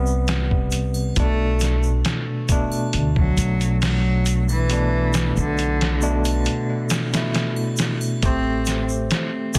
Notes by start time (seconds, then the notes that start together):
Already playing: C2 C3 G3 B3
0.06 shaker
0.27 snare, closed hi-hat, shaker
0.51 kick
0.71 closed hi-hat, shaker
0.94 triangle, shaker
1.16 B1 B2 A3 D4, kick, closed hi-hat, shaker
1.60 snare, closed hi-hat, shaker
1.83 shaker
2.05 snare, closed hi-hat, shaker
2.49 B2 A3 D4, kick, closed hi-hat, shaker
2.72 triangle, shaker
2.93 D2, closed hi-hat, shaker
3.16 F#3, kick
3.38 B1, closed hi-hat, shaker
3.61 closed hi-hat, shaker
3.82 F#3, snare, open hi-hat, shaker
4.26 closed hi-hat, shaker
4.49 E3, triangle, shaker
4.70 B2 A3 D4, closed hi-hat, shaker
5.13 snare, closed hi-hat, shaker
5.37 B1 D3, shaker
5.58 closed hi-hat, shaker
5.81 snare, closed hi-hat
6.02 B2 A3 D4, shaker
6.25 closed hi-hat, triangle, shaker
6.45 closed hi-hat, shaker
6.90 snare, closed hi-hat, shaker
7.13 B2 A3 E4, snare, closed hi-hat, shaker
7.34 snare, closed hi-hat, shaker
7.56 triangle
7.77 snare, closed hi-hat, shaker
8.01 triangle, shaker
8.22 A1 A3 C4 G4 C5, kick, closed hi-hat, shaker
8.66 snare, closed hi-hat, shaker
8.89 shaker
9.10 snare, closed hi-hat, shaker
9.54 A3, kick, closed hi-hat, shaker